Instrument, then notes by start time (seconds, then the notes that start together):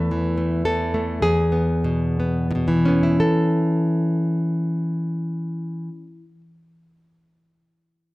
nylon-string guitar
Already playing: E2 A3 B4
0.11 E3
0.38 A3
0.65 E3 A4
0.94 A3
1.22 E2 G#4
1.52 B3
1.84 B2
2.20 B3
2.51 A2
2.55 B2
2.68 E3
2.85 B3 C#4
3.03 E4
3.20 A4